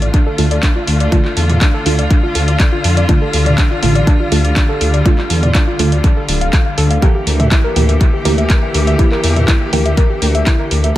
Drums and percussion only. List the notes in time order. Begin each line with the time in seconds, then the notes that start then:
0.02 closed hi-hat
0.14 kick, closed hi-hat
0.38 open hi-hat
0.51 closed hi-hat
0.63 kick, clap, closed hi-hat
0.88 open hi-hat
1.00 closed hi-hat
1.12 kick, closed hi-hat
1.25 clap
1.37 open hi-hat
1.50 closed hi-hat, mid tom
1.61 kick, clap, closed hi-hat
1.86 open hi-hat
1.99 closed hi-hat
2.10 kick, closed hi-hat
2.35 open hi-hat
2.48 closed hi-hat
2.60 kick, clap, closed hi-hat
2.84 open hi-hat
2.97 closed hi-hat
3.09 kick, closed hi-hat
3.33 open hi-hat
3.46 closed hi-hat, mid tom
3.58 kick, clap, closed hi-hat
3.83 mid tom, open hi-hat
3.95 closed hi-hat
4.07 kick, closed hi-hat
4.32 open hi-hat
4.45 closed hi-hat
4.56 kick, clap, closed hi-hat
4.81 open hi-hat
4.94 closed hi-hat
5.06 kick, closed hi-hat
5.18 clap
5.30 open hi-hat
5.43 closed hi-hat, mid tom
5.55 kick, clap, closed hi-hat
5.79 open hi-hat
5.92 closed hi-hat
6.04 kick, closed hi-hat
6.29 open hi-hat
6.41 closed hi-hat
6.53 kick, clap, closed hi-hat
6.78 open hi-hat
6.91 closed hi-hat
7.02 kick, closed hi-hat
7.27 open hi-hat
7.40 closed hi-hat, mid tom
7.52 kick, clap, closed hi-hat
7.76 mid tom, open hi-hat
7.89 closed hi-hat
8.01 kick, closed hi-hat
8.25 open hi-hat
8.38 closed hi-hat
8.50 kick, clap, closed hi-hat
8.74 open hi-hat
8.87 closed hi-hat
8.99 kick, closed hi-hat
9.12 clap
9.24 open hi-hat
9.36 closed hi-hat, mid tom
9.48 kick, clap, closed hi-hat
9.73 open hi-hat
9.86 closed hi-hat
9.97 kick, closed hi-hat
10.22 open hi-hat
10.35 closed hi-hat
10.47 kick, clap, closed hi-hat
10.71 open hi-hat
10.84 closed hi-hat